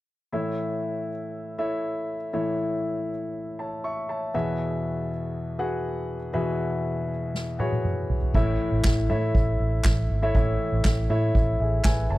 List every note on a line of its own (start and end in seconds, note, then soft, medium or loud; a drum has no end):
0.32 2.30 A2 medium
0.32 2.29 E3 soft
0.32 1.09 E4 medium
0.32 1.09 A4 medium
0.32 1.09 C#5 medium
0.32 1.09 E5 medium
1.58 2.15 E4 medium
1.58 2.16 A4 medium
1.58 2.16 C#5 medium
1.58 2.16 E5 medium
2.33 4.30 A2 soft
2.33 4.30 E3 medium
2.33 3.10 E4 medium
2.33 3.10 A4 medium
2.33 3.10 C#5 medium
2.33 3.10 E5 medium
3.59 3.83 C#5 soft
3.59 3.83 A5 medium
3.84 4.08 E5 soft
3.84 4.08 C#6 medium
4.09 4.57 C#5 soft
4.09 4.57 A5 medium
4.34 6.31 E2 medium
4.34 6.30 B2 medium
4.34 5.10 F#4 medium
4.34 5.10 G#4 medium
4.34 5.10 B4 medium
4.34 5.10 E5 medium
5.59 6.16 F#4 medium
5.59 6.16 G#4 medium
5.59 6.16 B4 medium
5.59 6.16 F#5 medium
6.33 8.30 E2 medium
6.33 8.30 B2 medium
6.33 7.10 F#4 medium
6.33 7.10 G#4 medium
6.33 7.10 B4 medium
6.33 7.10 E5 medium
7.34 snare soft
7.59 8.16 F#4 medium
7.59 8.17 G#4 medium
7.59 8.16 B4 medium
7.59 8.17 C#5 medium
7.59 high tom medium
7.72 high tom medium
7.85 mid tom medium
8.10 floor tom medium
8.22 floor tom medium
8.35 8.55 A1 medium
8.35 9.06 A2 medium
8.35 9.06 E3 medium
8.35 8.92 E4 medium
8.35 8.92 A4 medium
8.35 8.92 C#5 medium
8.35 8.92 E5 medium
8.35 kick medium
8.35 crash medium
8.72 8.82 A1 medium
8.84 9.11 A1 medium
8.84 kick medium
8.84 snare medium
8.84 clap medium
9.09 9.30 A2 medium
9.09 9.85 E4 medium
9.09 9.86 A4 medium
9.09 9.86 C#5 medium
9.09 9.86 E5 medium
9.35 9.55 A1 medium
9.35 kick loud
9.60 9.80 A1 medium
9.84 10.05 A1 medium
9.84 kick medium
9.84 snare medium
9.84 clap medium
10.10 10.30 G#1 medium
10.22 10.32 E4 medium
10.22 10.32 A4 medium
10.22 10.32 C#5 medium
10.22 10.32 E5 medium
10.35 10.55 A1 medium
10.35 11.06 A2 medium
10.35 11.06 E3 medium
10.35 10.92 E4 medium
10.35 10.92 A4 medium
10.35 10.92 C#5 medium
10.35 10.92 E5 medium
10.35 kick medium
10.72 10.83 A1 medium
10.84 11.05 A1 medium
10.84 kick medium
10.84 snare medium
10.84 clap medium
11.10 11.30 A2 medium
11.10 11.86 E4 medium
11.10 11.60 A4 medium
11.10 11.60 C#5 medium
11.10 11.59 E5 medium
11.35 11.55 A1 medium
11.35 kick medium
11.60 11.80 A1 medium
11.60 11.84 G#4 soft
11.60 11.84 E5 medium
11.84 12.05 A1 medium
11.84 12.09 B4 medium
11.84 12.09 G#5 medium
11.84 kick medium
11.84 snare loud
11.84 clap medium
12.10 12.18 F#1 medium
12.10 12.18 C#5 soft
12.10 12.18 A5 medium